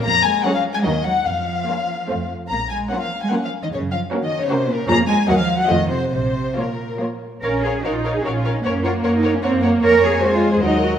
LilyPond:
<<
  \new Staff \with { instrumentName = "Violin section" } { \time 3/4 \key bes \minor \tempo 4 = 149 bes''8 aes''8 ges''16 f''8 aes''16 ees''8 ges''8 | f''2~ f''8 r8 | bes''8 aes''8 ges''16 f''8 aes''16 ges''16 f''8 ees''16 | des''8 f''8. ees''8 des''16 c''8 bes'8 |
bes''8 aes''8 ges''16 f''8 ges''16 ees''8 c''8 | c''4 bes'4 r4 | f''8 f''8 f''8 f''8 f''8 f''8 | ges''8 ges''8 ges''8 ges''8 ges''8 ges''8 |
aes''2 ges''4 | }
  \new Staff \with { instrumentName = "Violin section" } { \time 3/4 \key bes \minor << { r4 <aes' des''>4 <ges' bes'>4 | r4 <f' bes'>4 <f' c''>4 | r4 <f' bes'>4 <f' bes'>4 | r4 <ges' bes'>4 <ges' bes'>4 |
<aes' des''>4 <bes' ees''>4 <f' c''>4 | r4 <f' des''>4 <f' des''>4 | des''8 des''8 des''8 des''8 des''8 des''8 | des''8 des''8 des''8 des''8 des''8 des''8 |
des''2 ees''4 | } \\ { r2. | r2. | r2. | r2. |
r2. | r2. | bes'8 bes'8 bes'8 bes'8 bes'8 bes'8 | bes'8 bes'8 bes'8 bes'8 bes'8 bes'8 |
des''4 c''4 bes'4 | } >> }
  \new Staff \with { instrumentName = "Viola section" } { \time 3/4 \key bes \minor r4 <aes des'>4 <bes ees'>4 | r4 <bes des'>4 <a c'>4 | r4 <bes des'>4 <bes des'>4 | r4 <bes des'>4 <bes des'>4 |
<f des'>4 <ges bes>4 <f a>4 | r4 <f bes>4 <f bes>4 | des'4 ees'4 des'4 | bes2 bes4~ |
bes4 aes4 ges4 | }
  \new Staff \with { instrumentName = "Cello section" } { \clef bass \time 3/4 \key bes \minor bes8 aes8 ges16 f8 aes16 ees8 ges8 | f2~ f8 r8 | bes8 aes8 ges16 f8 aes16 ges16 f8 ees16 | des8 f8. ees8 des16 c8 bes,8 |
bes8 aes8 ges16 f8 ges16 ees8 c8 | c4 bes,4 r4 | bes'8 aes'8 ges'16 f'8 aes'16 ges'16 f'8 ees'16 | des'8 f'8. ees'8 des'16 c'8 bes8 |
bes'8 aes'8 ges'16 f'8 aes'16 ees'8 ges'8 | }
  \new Staff \with { instrumentName = "Double bass section" } { \clef bass \time 3/4 \key bes \minor f,4 r4 ees,4 | f,4 r4 f,4 | bes,,4 r2 | ges,4 r2 |
f,4 ees,4 f,4 | bes,,4 r2 | bes,,4 bes,,4 bes,,4 | ges,4 ges,4 ges,4 |
f,2 ees,4 | }
>>